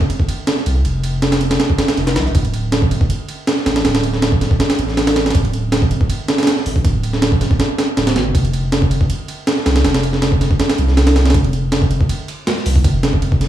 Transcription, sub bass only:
0.66 0.83 C2 medium
0.85 1.59 F1 loud
1.97 2.18 F1 loud
2.16 2.28 C2 medium
2.26 2.34 G#1 loud
2.35 3.08 D1 loud
3.66 3.83 A1 medium
3.85 4.58 D1 loud
4.79 5.33 A1 medium
5.35 6.08 D1 loud
6.66 6.83 A1 medium
6.85 7.58 D1 loud
7.97 8.17 D1 loud
8.16 8.27 A1 medium
8.26 8.34 F1 loud
8.35 9.08 F1 loud
9.66 9.83 C2 medium
9.85 10.58 F1 loud
10.79 11.33 C2 loud
11.34 12.08 F1 loud
12.66 12.83 C2 medium
12.85 13.48 F1 loud

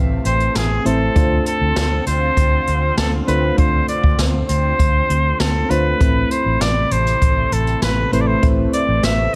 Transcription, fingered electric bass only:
0.00 0.16 A1 medium
0.25 0.47 A1 medium
0.55 0.77 A1 medium
0.86 1.07 A1 medium
1.16 1.38 D2 medium
1.61 1.72 D2 medium
1.76 1.98 D2 medium
2.07 2.28 D2 medium
2.37 2.59 D2 medium
2.67 2.89 D2 medium
2.97 3.19 D2 medium
3.28 3.50 D2 medium
3.58 3.80 D2 medium
4.04 4.14 D2 medium
4.19 4.41 D2 loud
4.49 4.71 D2 medium
4.79 5.01 D2 loud
5.10 5.31 D2 medium
5.40 5.62 D2 medium
5.70 5.92 D2 medium
6.01 6.22 A1 medium
6.46 6.57 A1 medium
6.61 6.83 A1 medium
6.91 7.13 A1 medium
7.22 7.43 A1 medium
7.52 7.74 A1 medium
7.82 8.04 A1 medium
8.12 8.34 A1 medium
8.43 8.65 A1 medium
8.88 8.99 A1 medium
9.03 9.25 A1 medium

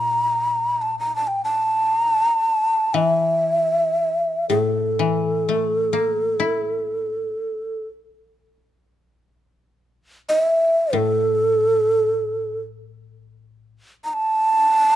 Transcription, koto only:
0.00 2.20 A#2 soft
2.94 4.98 E3 soft
4.50 7.28 A2 soft
4.99 6.85 E3 soft
5.49 7.30 A3 soft
5.93 7.73 A#3 soft
6.40 8.18 E4 soft
10.93 13.76 A2 soft

